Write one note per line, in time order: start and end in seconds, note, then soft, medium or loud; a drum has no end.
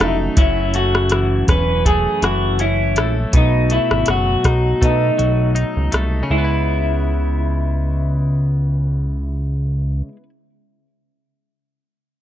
0.00 0.30 F1 medium
0.00 0.37 B2 medium
0.00 0.38 F#3 medium
0.00 1.11 F#3 medium
0.00 0.38 A3 medium
0.00 0.74 A3 medium
0.00 0.38 C#4 medium
0.00 0.37 D#4 medium
0.00 0.38 D#4 medium
0.00 0.05 F#4 medium
0.00 cross-stick medium
0.05 0.17 E4 medium
0.37 1.44 F#1 loud
0.37 3.33 F#2 medium
0.37 1.48 C#4 medium
0.37 0.75 E4 medium
0.37 kick loud
0.37 closed hi-hat medium
0.74 1.85 A3 medium
0.74 1.45 F#4 medium
0.74 closed hi-hat soft
0.95 cross-stick medium
1.10 2.21 E3 medium
1.10 cross-stick medium
1.10 closed hi-hat medium
1.48 2.07 E1 medium
1.48 2.58 C#4 medium
1.48 1.86 B4 medium
1.48 kick medium
1.48 cross-stick medium
1.48 closed hi-hat soft
1.85 2.96 A3 medium
1.85 2.23 G#4 medium
1.85 kick medium
1.85 closed hi-hat medium
2.22 2.98 F#1 medium
2.22 3.42 E3 medium
2.22 2.61 F#4 medium
2.22 cross-stick medium
2.22 closed hi-hat soft
2.59 3.33 C#4 medium
2.59 3.13 E4 medium
2.59 closed hi-hat medium
2.96 3.26 A#1 medium
2.96 3.71 A3 medium
2.96 cross-stick medium
2.96 closed hi-hat soft
3.33 3.79 B1 loud
3.33 6.23 B2 medium
3.33 3.73 D#4 medium
3.33 kick loud
3.33 closed hi-hat medium
3.70 4.80 A3 medium
3.70 4.09 E4 medium
3.70 closed hi-hat medium
3.91 4.04 G#1 medium
3.91 cross-stick medium
4.06 4.37 F#1 medium
4.06 5.17 F#3 medium
4.06 cross-stick medium
4.06 closed hi-hat medium
4.10 4.85 F#4 medium
4.44 4.74 B1 medium
4.44 5.54 D#4 medium
4.44 kick medium
4.44 cross-stick medium
4.44 closed hi-hat soft
4.81 5.11 B2 loud
4.81 5.91 A3 medium
4.81 5.90 D#4 medium
4.81 kick medium
4.81 closed hi-hat medium
5.18 5.65 B1 medium
5.18 6.31 F#3 soft
5.18 closed hi-hat soft
5.55 6.38 D#4 medium
5.55 closed hi-hat medium
5.77 5.90 C#2 medium
5.92 6.23 C2 medium
5.92 6.37 A3 medium
5.92 cross-stick medium
5.92 closed hi-hat soft
6.23 10.08 C#3 medium
6.30 10.02 C#2 medium
6.30 10.16 G#3 medium
6.30 10.12 E4 medium
6.38 10.23 B3 medium
6.44 10.29 E4 medium